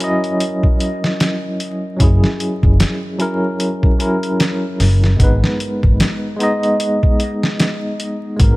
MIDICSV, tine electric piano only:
0, 0, Header, 1, 2, 480
1, 0, Start_track
1, 0, Tempo, 800000
1, 1199, Time_signature, 4, 2, 24, 8
1, 5138, End_track
2, 0, Start_track
2, 0, Title_t, "Tine electric piano"
2, 0, Program_c, 0, 4
2, 0, Control_c, 0, 64, 127
2, 0, Note_on_c, 0, 54, 101
2, 0, Note_on_c, 0, 61, 88
2, 0, Note_on_c, 0, 64, 79
2, 0, Note_on_c, 0, 70, 104
2, 9, Note_off_c, 0, 64, 0
2, 9, Note_on_c, 0, 64, 85
2, 23, Note_on_c, 0, 75, 111
2, 1166, Note_off_c, 0, 54, 0
2, 1173, Note_off_c, 0, 61, 0
2, 1180, Note_off_c, 0, 64, 0
2, 1180, Note_on_c, 0, 54, 69
2, 1187, Note_off_c, 0, 75, 0
2, 1193, Note_on_c, 0, 61, 68
2, 1208, Note_on_c, 0, 64, 71
2, 1222, Note_on_c, 0, 68, 84
2, 1886, Note_off_c, 0, 54, 0
2, 1892, Note_off_c, 0, 61, 0
2, 1899, Note_off_c, 0, 64, 0
2, 1906, Note_off_c, 0, 68, 0
2, 1911, Note_on_c, 0, 54, 89
2, 1918, Note_on_c, 0, 61, 80
2, 1924, Note_on_c, 0, 64, 76
2, 1931, Note_off_c, 0, 70, 0
2, 1931, Note_on_c, 0, 70, 98
2, 2371, Note_off_c, 0, 54, 0
2, 2375, Note_off_c, 0, 61, 0
2, 2377, Note_off_c, 0, 64, 0
2, 2381, Note_off_c, 0, 70, 0
2, 2390, Note_on_c, 0, 54, 76
2, 2396, Note_on_c, 0, 61, 69
2, 2403, Note_on_c, 0, 64, 74
2, 2410, Note_on_c, 0, 70, 84
2, 2526, Note_off_c, 0, 54, 0
2, 2529, Note_off_c, 0, 61, 0
2, 2533, Note_off_c, 0, 64, 0
2, 2536, Note_off_c, 0, 70, 0
2, 3100, Note_on_c, 0, 56, 83
2, 3114, Note_on_c, 0, 59, 82
2, 3128, Control_c, 0, 64, 0
2, 3128, Note_on_c, 0, 63, 79
2, 3141, Note_on_c, 0, 71, 93
2, 3240, Control_c, 0, 64, 127
2, 3805, Note_off_c, 0, 56, 0
2, 3812, Note_off_c, 0, 59, 0
2, 3819, Note_off_c, 0, 63, 0
2, 3819, Note_on_c, 0, 56, 104
2, 3826, Note_off_c, 0, 71, 0
2, 3833, Note_on_c, 0, 59, 87
2, 3847, Note_on_c, 0, 63, 91
2, 3860, Note_on_c, 0, 75, 109
2, 5005, Note_off_c, 0, 56, 0
2, 5012, Note_off_c, 0, 59, 0
2, 5019, Note_off_c, 0, 63, 0
2, 5020, Note_on_c, 0, 56, 72
2, 5026, Note_off_c, 0, 75, 0
2, 5034, Note_on_c, 0, 59, 71
2, 5048, Note_on_c, 0, 63, 70
2, 5063, Note_on_c, 0, 70, 80
2, 5138, Note_off_c, 0, 56, 0
2, 5138, Note_off_c, 0, 59, 0
2, 5138, Note_off_c, 0, 63, 0
2, 5138, Note_off_c, 0, 70, 0
2, 5138, End_track
0, 0, End_of_file